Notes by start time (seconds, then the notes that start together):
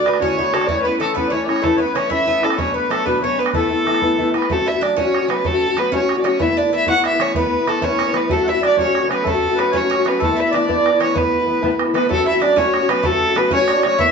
Already playing: D4
0.04 D3 A3 D4 F#4 B4, bodhran
0.08 B4
0.13 bodhran
0.20 D2 A2 D3 A3 C#4 D4 F#4 C#5, bodhran
0.37 D3 A3 B3 D4 F#4, bodhran
0.52 D3 A3 D4 F#4 A4, bodhran
0.61 D5, bodhran
0.67 A2 E3 A3 C#4 E4 C#5, bodhran
0.82 B3 C#4 E4 B4
0.87 A3
1.00 E3 A3 C#4 E4 A4, bodhran
1.14 A2 E3 A3 B3 C#4 E4 B4, bodhran
1.28 E3 C#4 C#5 D5
1.32 A3 C#4 E4 C#5, bodhran
1.43 C#5 D5
1.47 A3 C#4 E4 C#5, bodhran
1.56 bodhran
1.62 A2 E3 A3 C#4 E4 A4, bodhran
1.76 B3 E4 B4 C#5
1.80 A3 C#4 B4
1.94 E3 A3 C#4 E4 C#5, bodhran
2.09 A2 E3 A3 C#4 E4 E5, bodhran
2.13 E5
2.26 E3 A3 B3 C#4 E4, bodhran
2.41 A3 C#4 E4 A4, bodhran
2.50 bodhran
2.55 B2 F#3 A3 B3 C#4 D4 C#5, bodhran
2.72 B3 D4 B4
2.77 A3
2.89 F#3 A3 B3 D4 A4, bodhran
3.04 B2 F#3 A3 B3 D4 B4, bodhran
3.21 F#3 A3 B3 C#4 D4 C#5, bodhran
3.37 A3 B3 D4 B4
3.46 bodhran
3.53 A2 E3 A3 B3 E4 A4, bodhran
3.70 A3 B3 E4
3.85 E3 A3 B3 E4, bodhran
3.94 bodhran
4.01 A2 E3 A3 B3 E4, bodhran
4.18 E3 A3 B3 E4, bodhran
4.33 A3 B3 E4 B4, bodhran
4.42 bodhran
4.50 F#3 A3 C#4 F#4 A4, bodhran
4.58 A3 C#4 F#4, bodhran
4.66 E4 E5, bodhran
4.74 A3 C#4 F#4
4.81 F#3 A3 C#4 D4 F#4 D5, bodhran
4.96 F#3 A3 C#4 F#4 C#5, bodhran
5.04 A3 C#4 F#4
5.14 bodhran
5.21 A3 C#4 F#4
5.28 F#3 A3 B3 C#4 F#4 B4, bodhran
5.44 F#3 A3 C#4 F#4 A4, bodhran
5.52 A3 C#4 F#4, bodhran
5.62 bodhran
5.69 A3 C#4 F#4
5.77 F#3 A3 B3 C#4 F#4 B4, bodhran
5.92 F#3 A3 C#4 F#4 C#5, bodhran
6.00 A3 C#4 F#4
6.09 bodhran
6.15 A3 C#4 F#4
6.20 F#3 A3 D5
6.24 C#4 F#4 C#5, bodhran
6.39 A2 E3 A3 B3 E4 E5, bodhran
6.47 A3 B3 E4, bodhran
6.56 D4 D5, bodhran
6.63 A3 B3 E4
6.71 E3 A3 B3 E4
6.75 E5
6.86 A2 E3 A3 B3 E4 F#4, bodhran
6.90 F#5
6.97 B3
7.04 E4 E5, bodhran
7.11 A3 B3 E4
7.19 E3 A3 B3 C#4 E4 C#5, bodhran
7.34 A2 E3 A3 B3 E4 B4, bodhran
7.42 A3 B3 E4, bodhran
7.52 bodhran
7.58 A3 B3 E4
7.65 E3 A3 B3 E4 A4, bodhran
7.81 A2 E3 A3 B3 C#4 E4 C#5, bodhran
7.88 A3 B3 E4
7.99 C#4, bodhran
8.05 A3 B3 E4
8.12 E3 A3 B3 E4, bodhran
8.17 B4
8.28 F#3 A3 C#4 F#4 A4, bodhran
8.33 F#4 A4
8.38 A3 C#4
8.43 E5 F#5, bodhran
8.48 E4 E5
8.52 A3 C#4 F#4
8.58 F#3 A3 C#4 D5 E5
8.63 D4 F#4 D5, bodhran
8.76 F#3 A3 C#4 F#4 C#5, bodhran
8.81 C#4 F#4 C#5
8.86 A3 C#4
8.95 bodhran
9.00 A3 C#4 F#4 C#5
9.07 F#3 A3 C#4 F#4 B4, bodhran
9.12 B3 B4
9.23 F#3 A3 C#4 F#4 A4, bodhran
9.27 A3 A4
9.33 A3 C#4 F#4
9.44 bodhran
9.49 A3 C#4 F#4
9.55 F#3 A3 B3 C#4 B4, bodhran
9.59 F#4 B4
9.71 F#3 A3 C#4 F#4 C#5, bodhran
9.76 C#5
9.82 A3 C#4 F#4
9.90 C#4, bodhran
9.97 A3 C#4 F#4
10.04 F#3 A3 B3 C#4 B4, bodhran
10.08 F#4 B4
10.19 A2 E3 A3 A4, bodhran
10.23 A3 B3 E4 A4
10.29 A3 B3 E4, bodhran
10.35 E4 E5
10.39 E5, bodhran
10.45 A3 B3 E4
10.51 E3 A3 B3 D4 D5, bodhran
10.55 E4 D5
10.68 A2 E3 A3 B3 E4, bodhran
10.76 A3 B3 E4
10.86 bodhran
10.92 A3 B3 E4
10.98 E3 A3 B3 C#4 E4 C#5, bodhran
11.13 A2 E3 A3 B3 E4 B4, bodhran
11.18 B4
11.22 A3 B3 E4, bodhran
11.33 bodhran
11.39 A3 B3 E4
11.46 E3 A3 B3 E4
11.62 A2 E3 A3 B3 E4, bodhran
11.70 A3 B3 E4
11.79 bodhran
11.85 A3 B3 E4
11.93 E3 A3 B3 E4 B4, bodhran
12.08 F#3 A3 C#4 F#4 A4, bodhran
12.17 A3 C#4 F#4
12.25 E4 E5, bodhran
12.33 A3 C#4 F#4
12.41 F#3 A3 C#4 D4 F#4 D5, bodhran
12.56 F#3 A3 C#4 F#4 C#5, bodhran
12.64 A3 F#4
12.74 bodhran
12.81 A3 C#4 F#4
12.88 F#3 A3 B3 C#4 F#4 B4, bodhran
13.03 F#3 A3 C#4 F#4 A4, bodhran
13.12 A3 C#4 F#4, bodhran
13.20 bodhran
13.28 A3 C#4 F#4
13.35 F#3 A3 B3 C#4 F#4 B4, bodhran
13.51 F#3 A3 C#4 F#4 C#5, bodhran
13.59 A3 C#4 F#4
13.68 D4, bodhran
13.76 A3 C#4 F#4
13.83 F#3 A3 C#4 F#4 C#5, bodhran
13.98 A2 E3 A3 B3 E4 E5, bodhran
14.06 A3 E4, bodhran